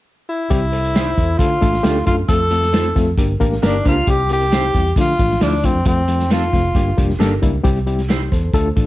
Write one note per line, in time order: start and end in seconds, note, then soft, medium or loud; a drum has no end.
0.29 1.40 E4 medium
0.50 1.14 C2 medium
0.50 0.65 G3 loud
0.50 0.65 C4 loud
0.50 0.65 E4 medium
0.50 0.65 G4 loud
0.50 kick loud
0.50 closed hi-hat medium
0.72 0.94 A4 soft
0.72 0.94 C5 medium
0.72 closed hi-hat medium
0.84 closed hi-hat medium
0.95 1.06 E4 medium
0.95 1.06 G4 medium
0.95 1.06 C5 medium
0.95 1.16 E5 medium
0.95 snare loud
0.95 closed hi-hat medium
1.17 1.35 E2 medium
1.17 1.39 A4 medium
1.17 1.60 C5 medium
1.17 kick medium
1.17 closed hi-hat medium
1.38 1.56 D3 loud
1.38 1.54 A3 medium
1.38 1.54 D4 medium
1.38 2.06 F4 loud
1.38 1.54 F4 medium
1.38 1.54 A4 medium
1.38 kick loud
1.38 closed hi-hat medium
1.61 1.79 A1 medium
1.61 1.76 A3 medium
1.61 1.76 D4 medium
1.61 1.76 F4 medium
1.61 1.76 A4 medium
1.61 kick medium
1.61 closed hi-hat medium
1.74 snare soft
1.83 2.01 D2 medium
1.83 1.98 A3 medium
1.83 1.98 D4 medium
1.83 1.95 D4 medium
1.83 1.98 F4 medium
1.83 1.95 F4 medium
1.83 1.98 G4 loud
1.83 1.95 A4 medium
1.83 snare loud
1.83 closed hi-hat medium
2.06 2.24 F#2 medium
2.06 2.20 A3 medium
2.06 2.20 D4 medium
2.06 2.21 F4 medium
2.06 2.17 F4 medium
2.06 2.20 A4 medium
2.06 kick medium
2.06 closed hi-hat medium
2.29 2.92 F2 medium
2.29 2.43 A3 medium
2.29 2.43 C4 medium
2.29 2.43 F4 medium
2.29 2.43 A4 loud
2.29 3.14 A4 loud
2.29 kick loud
2.29 closed hi-hat loud
2.51 2.65 A3 medium
2.51 2.65 C4 medium
2.51 2.65 F4 medium
2.51 2.65 A4 medium
2.51 closed hi-hat medium
2.63 snare soft
2.63 closed hi-hat soft
2.73 2.87 A3 medium
2.73 2.87 C4 medium
2.73 2.84 C4 medium
2.73 2.87 F4 medium
2.73 2.84 F4 loud
2.73 2.84 A4 loud
2.73 2.87 C5 medium
2.73 snare medium
2.73 closed hi-hat medium
2.95 3.13 F2 medium
2.95 3.10 A3 medium
2.95 3.10 C4 medium
2.95 3.10 F4 medium
2.95 3.10 A4 loud
2.95 kick medium
2.95 snare soft
2.95 closed hi-hat medium
3.18 3.35 G1 medium
3.18 3.32 A#3 medium
3.18 3.32 D4 medium
3.18 3.32 G4 medium
3.18 3.32 A#4 medium
3.18 kick medium
3.18 closed hi-hat medium
3.40 3.58 A1 medium
3.40 3.54 A#3 loud
3.40 3.55 D4 medium
3.40 3.54 G4 medium
3.40 3.55 A#4 loud
3.40 3.61 F5 medium
3.40 kick medium
3.40 closed hi-hat medium
3.52 snare soft
3.62 3.80 G1 medium
3.62 3.77 A#3 loud
3.62 3.73 D4 medium
3.62 3.77 D4 loud
3.62 3.85 D4 medium
3.62 3.77 G4 loud
3.62 3.74 G4 medium
3.62 3.77 A#4 loud
3.62 3.74 A#4 medium
3.62 3.83 G5 medium
3.62 snare loud
3.62 closed hi-hat medium
3.84 4.03 C#2 medium
3.84 3.99 A#3 medium
3.84 3.93 D4 medium
3.84 3.99 D4 medium
3.84 4.12 F4 medium
3.84 3.93 G4 medium
3.84 3.99 G4 medium
3.84 3.93 A#4 medium
3.84 3.99 C5 loud
3.84 4.06 A#5 medium
3.84 kick loud
3.84 closed hi-hat medium
4.07 4.71 C2 loud
4.07 4.22 G3 medium
4.07 4.22 C4 medium
4.07 4.22 E4 medium
4.07 4.22 G4 medium
4.07 4.31 G4 loud
4.07 kick loud
4.07 closed hi-hat medium
4.29 4.44 G3 medium
4.29 4.44 C4 medium
4.29 4.44 E4 medium
4.29 4.94 G4 loud
4.29 4.44 A#4 medium
4.29 closed hi-hat medium
4.41 closed hi-hat medium
4.51 4.66 G3 medium
4.51 4.66 C4 medium
4.51 4.62 E4 medium
4.51 4.66 E4 medium
4.51 4.63 G4 medium
4.51 4.66 G4 medium
4.51 4.63 C5 medium
4.51 snare loud
4.51 closed hi-hat medium
4.74 4.91 E2 medium
4.74 4.89 G3 medium
4.74 4.89 C4 medium
4.74 4.89 E4 medium
4.74 4.89 G4 medium
4.74 kick medium
4.74 closed hi-hat medium
4.96 5.13 D3 medium
4.96 5.11 F3 medium
4.96 5.11 A3 medium
4.96 5.11 D4 medium
4.96 5.11 F4 medium
4.96 5.44 F4 loud
4.96 kick medium
4.96 closed hi-hat medium
5.19 5.36 A1 medium
5.19 5.33 F3 medium
5.19 5.33 A3 medium
5.19 5.33 D4 medium
5.19 5.33 F4 medium
5.19 kick medium
5.19 closed hi-hat medium
5.30 snare soft
5.40 5.67 D2 medium
5.40 5.56 F3 medium
5.40 5.56 A3 medium
5.40 5.67 D4 medium
5.40 5.56 D4 medium
5.40 5.56 E4 loud
5.40 5.51 F4 medium
5.40 5.52 A4 medium
5.40 5.52 D5 medium
5.40 snare loud
5.40 closed hi-hat medium
5.63 5.78 F3 medium
5.63 5.78 A3 medium
5.63 5.86 C4 medium
5.63 5.78 D4 medium
5.63 5.78 F4 medium
5.63 kick medium
5.63 closed hi-hat medium
5.75 5.83 F2 medium
5.85 6.49 F2 medium
5.85 6.00 F3 medium
5.85 6.00 A3 medium
5.85 6.00 C4 medium
5.85 6.28 C4 medium
5.85 6.00 F4 medium
5.85 kick loud
5.85 closed hi-hat medium
6.08 6.23 F3 medium
6.08 6.23 A3 medium
6.08 6.23 C4 medium
6.08 6.23 F4 medium
6.08 closed hi-hat medium
6.20 snare soft
6.20 closed hi-hat medium
6.30 6.45 F3 medium
6.30 6.45 A3 medium
6.30 6.41 C4 medium
6.30 6.45 C4 medium
6.30 6.41 F4 medium
6.30 6.45 F4 medium
6.30 7.17 F4 medium
6.30 6.42 A4 medium
6.30 snare loud
6.30 closed hi-hat medium
6.53 6.70 F1 medium
6.53 6.67 F3 medium
6.53 6.67 A3 medium
6.53 6.67 C4 medium
6.53 6.67 F4 medium
6.53 kick medium
6.53 snare soft
6.53 closed hi-hat medium
6.75 6.92 G1 medium
6.75 6.90 G3 medium
6.75 6.90 A#3 medium
6.75 6.90 D4 medium
6.75 6.90 G4 medium
6.75 kick medium
6.75 closed hi-hat medium
6.97 7.15 F1 medium
6.97 7.12 G3 medium
6.97 7.12 A#3 medium
6.97 7.12 D4 medium
6.97 7.12 G4 medium
6.97 kick medium
6.97 closed hi-hat medium
7.10 snare soft
7.19 7.37 G1 medium
7.19 7.34 G3 loud
7.19 7.34 A#3 medium
7.19 7.30 D4 medium
7.19 7.34 D4 medium
7.19 7.30 G4 medium
7.19 7.34 A4 loud
7.19 7.31 A#4 loud
7.19 snare loud
7.19 closed hi-hat medium
7.42 7.60 C#2 medium
7.42 7.56 G3 medium
7.42 7.56 A#3 medium
7.42 7.56 D4 medium
7.42 7.56 E4 medium
7.42 kick medium
7.42 closed hi-hat medium
7.64 8.28 C2 medium
7.64 7.78 G3 loud
7.64 7.78 C4 loud
7.64 7.78 E4 loud
7.64 7.78 G4 loud
7.64 kick loud
7.64 closed hi-hat medium
7.76 closed hi-hat soft
7.87 8.01 G3 medium
7.87 8.01 C4 medium
7.87 8.01 E4 medium
7.87 8.01 G4 medium
7.87 closed hi-hat medium
7.99 snare soft
7.99 closed hi-hat medium
8.09 8.19 E4 medium
8.09 8.31 E4 soft
8.09 8.20 G4 medium
8.09 8.30 G4 medium
8.09 8.20 C5 medium
8.09 snare loud
8.09 closed hi-hat medium
8.32 8.49 E2 medium
8.32 8.53 A4 medium
8.32 8.74 C5 medium
8.32 kick medium
8.32 snare soft
8.32 closed hi-hat medium
8.53 8.71 D2 medium
8.53 8.68 A3 loud
8.53 8.68 D4 medium
8.53 8.68 F4 medium
8.53 8.68 A4 loud
8.53 kick medium
8.53 closed hi-hat medium
8.76 8.87 A1 medium
8.76 8.87 A3 medium
8.76 8.87 D4 medium
8.76 8.87 F4 medium
8.76 8.87 A4 medium
8.76 kick medium
8.76 closed hi-hat medium